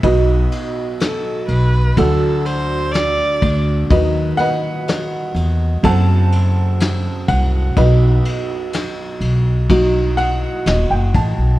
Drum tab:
RD |xxxxxxxx|xxxxxxxx|xxxxxxxx|
SD |--o---o-|--o---o-|--o---o-|
BD |o---o--o|o---o--o|o---o--o|